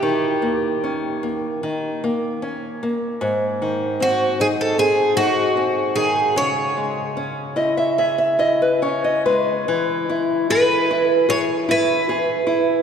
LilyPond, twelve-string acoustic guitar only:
\new Staff \with { instrumentName = "Twelve-string acoustic guitar" } { \time 4/4 \key cis \minor \tempo 4 = 75 g'4. r2 r8 | r4 fis'8 gis'16 a'16 gis'8 fis'4 gis'8 | cis''2. r4 | \key e \major r4 b'4 cis''8 b'4. | }